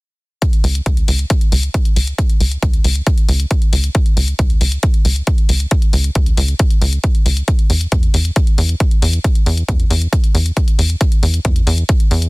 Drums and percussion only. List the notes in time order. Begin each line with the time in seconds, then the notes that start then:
0.42 kick, closed hi-hat
0.53 closed hi-hat
0.64 open hi-hat
0.75 closed hi-hat
0.86 kick, closed hi-hat
0.97 closed hi-hat
1.08 open hi-hat
1.19 closed hi-hat
1.30 kick, closed hi-hat
1.41 closed hi-hat
1.52 open hi-hat
1.63 closed hi-hat
1.74 kick, closed hi-hat
1.85 closed hi-hat
1.96 open hi-hat
2.07 closed hi-hat
2.18 kick, closed hi-hat
2.30 closed hi-hat
2.40 open hi-hat
2.51 closed hi-hat
2.62 kick, closed hi-hat
2.73 closed hi-hat
2.84 open hi-hat
2.95 closed hi-hat
3.07 kick, closed hi-hat
3.18 closed hi-hat
3.29 open hi-hat
3.40 closed hi-hat
3.51 kick, closed hi-hat
3.62 closed hi-hat
3.73 open hi-hat
3.84 closed hi-hat
3.95 kick, closed hi-hat
4.06 closed hi-hat
4.17 open hi-hat
4.28 closed hi-hat
4.39 kick, closed hi-hat
4.50 closed hi-hat
4.61 open hi-hat
4.72 closed hi-hat
4.83 kick, closed hi-hat
4.94 closed hi-hat
5.05 open hi-hat
5.16 closed hi-hat
5.27 kick, closed hi-hat
5.38 closed hi-hat
5.49 open hi-hat
5.60 closed hi-hat
5.71 kick, closed hi-hat
5.82 closed hi-hat
5.93 open hi-hat
6.04 closed hi-hat
6.15 kick, closed hi-hat
6.26 closed hi-hat
6.37 open hi-hat
6.48 closed hi-hat
6.59 kick, closed hi-hat
6.70 closed hi-hat
6.82 open hi-hat
6.93 closed hi-hat
7.04 kick, closed hi-hat
7.15 closed hi-hat
7.26 open hi-hat
7.37 closed hi-hat
7.48 kick, closed hi-hat
7.59 closed hi-hat
7.70 open hi-hat
7.81 closed hi-hat
7.92 kick, closed hi-hat
8.03 closed hi-hat
8.14 open hi-hat
8.25 closed hi-hat
8.36 kick, closed hi-hat
8.47 closed hi-hat
8.58 open hi-hat
8.69 closed hi-hat
8.80 kick, closed hi-hat
8.91 closed hi-hat
9.02 open hi-hat
9.13 closed hi-hat
9.24 kick, closed hi-hat
9.35 closed hi-hat
9.46 open hi-hat
9.57 closed hi-hat
9.69 kick, closed hi-hat
9.80 closed hi-hat
9.90 open hi-hat
10.02 closed hi-hat
10.13 kick, closed hi-hat
10.24 closed hi-hat
10.35 open hi-hat
10.46 closed hi-hat
10.57 kick, closed hi-hat
10.68 closed hi-hat
10.79 open hi-hat
10.90 closed hi-hat
11.01 kick, closed hi-hat
11.12 closed hi-hat
11.23 open hi-hat
11.34 closed hi-hat
11.45 kick, closed hi-hat
11.56 closed hi-hat
11.67 open hi-hat
11.78 closed hi-hat
11.89 kick, closed hi-hat
12.00 closed hi-hat
12.11 open hi-hat
12.22 closed hi-hat